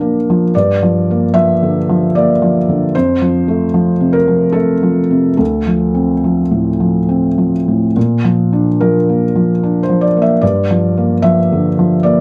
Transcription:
Already playing: A#2 F3 D4 A#4
0.00 A#3
0.30 F3
0.55 G2 D5
0.83 F3
1.11 A#3
1.34 F3 E5
1.63 D3
1.89 F3
2.15 A#3 D5
2.42 F3
2.69 D3
2.95 F2 C5
3.21 F3
3.48 A3
3.74 F3
4.00 C3
4.13 A#4
4.28 F3
4.52 A3 A4
4.83 F3
5.11 C3
5.37 D2 A4
5.67 F3
5.95 C4
6.24 F3
6.51 A2
6.80 F3
7.09 C4
7.38 F3
7.68 A2
7.97 A#2
8.24 F3
8.53 D4
8.80 F3 A#4
9.09 A#3
9.36 F3
9.63 D4
9.83 C5
9.89 F3
10.01 D5
10.17 A#3
10.22 E5
10.41 G2 D5
10.70 F3
10.97 A#3
11.22 F3 E5
11.52 D3
11.79 F3
12.03 A#3 D5

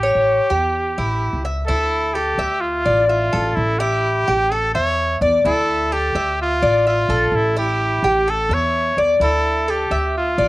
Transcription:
Already playing: A1 G4
0.03 C#5
0.15 A1
0.50 E2 G4
0.98 A1 E4
1.33 C#2
1.45 E5
1.67 D2 E4 A4
2.14 G4 A4
2.38 D2 E5
2.61 F4
2.85 A1 D5
3.08 F4 E5
3.33 A1 A4
3.55 A1 E4
3.79 E4 G4
4.28 A1 G4
4.50 A4
4.74 E2 C#5 E5
5.21 E2 D5
5.45 D2 E4 A4
5.92 G4 A4
6.15 D2 E5
6.42 F4
6.62 A1 D5
6.87 F4 E5
7.09 A#1 A4
7.32 A1 E4
7.57 E4 G4
8.03 A1 G4
8.28 A4
8.49 E2 E5
8.54 C#5
8.97 E2 D5
9.20 D2 E4 A4
9.68 G4 A4
9.90 D2 E5
10.17 F4
10.38 A1 D5

